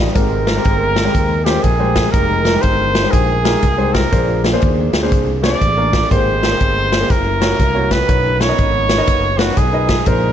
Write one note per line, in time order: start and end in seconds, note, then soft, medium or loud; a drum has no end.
0.00 0.14 G3 medium
0.00 0.14 D#4 medium
0.00 0.14 F4 medium
0.00 0.14 D5 medium
0.14 0.58 G#1 medium
0.14 0.92 G#2 medium
0.14 0.46 G#3 medium
0.14 4.08 G#3 medium
0.14 6.06 A#3 medium
0.14 0.46 C4 medium
0.14 2.11 C4 medium
0.14 0.47 G4 medium
0.14 4.08 A#4 medium
0.14 0.47 A#4 medium
0.14 1.46 A#4 medium
0.14 kick loud
0.14 closed hi-hat medium
0.47 snare medium
0.47 closed hi-hat medium
0.56 0.91 G#3 medium
0.56 0.91 C4 medium
0.56 0.92 G4 medium
0.56 0.92 A#4 medium
0.65 1.07 G1 medium
0.65 kick medium
0.65 closed hi-hat medium
0.96 snare loud
0.96 closed hi-hat medium
1.04 1.30 G#3 medium
1.04 1.30 C4 medium
1.04 1.30 G4 medium
1.04 1.30 A#4 medium
1.15 1.57 D#2 medium
1.15 kick loud
1.15 closed hi-hat medium
1.45 1.64 G#3 medium
1.45 1.64 C4 medium
1.45 1.64 G4 medium
1.45 1.65 C5 medium
1.45 snare medium
1.45 closed hi-hat medium
1.63 2.06 A#1 medium
1.63 2.12 G#4 medium
1.63 kick medium
1.63 closed hi-hat medium
1.79 2.04 G#3 medium
1.79 2.04 C4 medium
1.79 2.05 G4 medium
1.79 2.05 C5 medium
1.95 kick medium
1.95 snare loud
1.95 closed hi-hat medium
2.12 2.56 F1 medium
2.12 2.45 G#3 medium
2.12 2.45 D#4 medium
2.12 4.10 D#4 medium
2.12 2.45 G4 medium
2.12 2.63 A#4 medium
2.12 2.45 A#4 medium
2.12 kick loud
2.12 closed hi-hat medium
2.45 snare medium
2.45 closed hi-hat medium
2.52 2.89 G#3 medium
2.52 2.89 D#4 medium
2.52 2.89 G4 medium
2.52 2.89 A#4 medium
2.62 3.06 G1 medium
2.62 3.13 C5 loud
2.62 kick loud
2.62 closed hi-hat medium
2.95 snare loud
2.95 closed hi-hat medium
3.03 3.28 G#3 medium
3.03 3.28 D#4 medium
3.03 3.28 G4 medium
3.03 3.29 C5 medium
3.12 3.55 A#1 medium
3.12 3.95 G#4 medium
3.12 kick loud
3.12 closed hi-hat medium
3.44 3.62 G#3 medium
3.44 3.62 D#4 medium
3.44 3.62 G4 medium
3.44 3.63 A#4 medium
3.44 snare loud
3.44 closed hi-hat medium
3.63 4.05 C2 medium
3.63 kick medium
3.63 closed hi-hat medium
3.77 4.03 G#3 medium
3.77 4.03 D#4 medium
3.77 4.03 G4 medium
3.77 4.03 C5 medium
3.94 4.44 A#4 medium
3.94 kick medium
3.94 snare loud
3.94 closed hi-hat medium
4.11 4.55 A#1 medium
4.11 4.89 A#2 medium
4.11 4.43 A#3 medium
4.11 7.07 C4 medium
4.11 4.44 D4 medium
4.11 6.09 D4 medium
4.11 4.43 G#4 medium
4.11 6.08 G#4 medium
4.11 4.44 C5 medium
4.11 kick loud
4.11 closed hi-hat medium
4.44 snare medium
4.44 closed hi-hat medium
4.52 4.88 A#3 medium
4.52 4.88 D4 medium
4.52 4.88 G#4 medium
4.52 4.88 C5 medium
4.62 4.89 D#2 medium
4.62 kick medium
4.62 closed hi-hat medium
4.93 5.09 D2 medium
4.93 snare medium
4.93 closed hi-hat medium
5.02 5.27 A#3 medium
5.02 5.27 D4 medium
5.02 5.27 G#4 medium
5.02 5.27 C5 medium
5.12 5.54 C2 medium
5.12 kick loud
5.12 closed hi-hat medium
5.42 5.60 A#3 medium
5.42 5.61 D4 medium
5.42 5.61 G#4 medium
5.42 5.61 C5 medium
5.42 6.07 D5 loud
5.42 snare loud
5.42 closed hi-hat medium
5.61 6.03 A1 medium
5.61 kick medium
5.61 closed hi-hat medium
5.77 6.01 A#3 medium
5.77 6.02 D4 medium
5.77 6.02 G#4 medium
5.77 6.02 A#4 medium
5.93 kick medium
5.93 snare loud
5.93 closed hi-hat medium
6.11 6.53 G#1 medium
6.11 6.88 G#2 medium
6.11 7.09 G#3 medium
6.11 6.42 A#3 medium
6.11 6.42 G4 medium
6.11 6.42 G#4 medium
6.11 7.09 A#4 medium
6.11 6.43 C5 medium
6.11 7.13 C5 medium
6.11 kick loud
6.11 closed hi-hat medium
6.43 snare medium
6.43 closed hi-hat medium
6.50 6.86 A#3 medium
6.50 6.86 G4 medium
6.50 6.86 G#4 medium
6.50 6.86 C5 medium
6.60 7.03 G1 medium
6.60 kick medium
6.60 closed hi-hat medium
6.92 snare loud
6.92 closed hi-hat medium
7.00 7.09 A#3 medium
7.00 7.10 G4 medium
7.00 7.10 G#4 medium
7.00 7.10 C5 medium
7.09 7.52 F#1 loud
7.09 8.08 F#3 medium
7.09 10.04 C#4 medium
7.09 8.08 E4 medium
7.09 7.93 A#4 medium
7.09 kick loud
7.09 closed hi-hat medium
7.40 7.59 A#3 medium
7.40 7.59 E4 medium
7.40 7.59 F#4 medium
7.40 7.59 C#5 medium
7.40 snare loud
7.40 closed hi-hat medium
7.60 8.02 C2 medium
7.60 kick medium
7.60 closed hi-hat medium
7.73 7.99 A#3 medium
7.73 7.99 E4 medium
7.73 7.99 F#4 medium
7.73 7.99 C#5 medium
7.91 8.43 B4 medium
7.91 kick medium
7.91 snare medium
7.91 closed hi-hat medium
8.07 8.51 B1 medium
8.07 8.85 B2 medium
8.07 8.39 B3 medium
8.07 10.05 B3 medium
8.07 8.40 D#4 medium
8.07 10.32 D#4 medium
8.07 8.40 A#4 medium
8.07 8.40 C#5 medium
8.07 kick loud
8.07 closed hi-hat medium
8.40 9.40 C#5 loud
8.40 snare medium
8.40 closed hi-hat medium
8.48 8.84 B3 medium
8.48 8.84 D#4 medium
8.48 8.84 A#4 medium
8.48 8.84 D#5 medium
8.58 9.01 G#1 medium
8.58 kick medium
8.58 closed hi-hat medium
8.89 snare medium
8.89 closed hi-hat medium
8.97 9.22 B3 medium
8.97 9.23 D#4 medium
8.97 9.23 A#4 medium
8.97 9.23 D#5 medium
9.07 9.50 F#1 medium
9.07 kick medium
9.07 closed hi-hat medium
9.38 9.57 B3 medium
9.38 9.57 D#4 medium
9.38 9.59 F#4 medium
9.38 9.57 A#4 medium
9.38 9.57 C#5 medium
9.38 snare loud
9.38 closed hi-hat medium
9.57 9.99 B1 medium
9.57 10.09 G#4 medium
9.57 kick medium
9.57 closed hi-hat medium
9.72 9.98 B3 medium
9.72 9.98 D#4 medium
9.72 9.98 A#4 medium
9.72 9.98 D#5 medium
9.89 kick medium
9.89 snare loud
9.89 closed hi-hat medium
10.06 10.32 A#1 medium
10.06 10.32 A#2 medium
10.06 10.32 G#3 medium
10.06 10.32 A#3 medium
10.06 10.32 C4 medium
10.06 10.32 D#4 medium
10.06 10.32 G#4 medium
10.06 10.32 A#4 medium
10.06 10.32 C5 medium
10.06 kick loud
10.06 closed hi-hat medium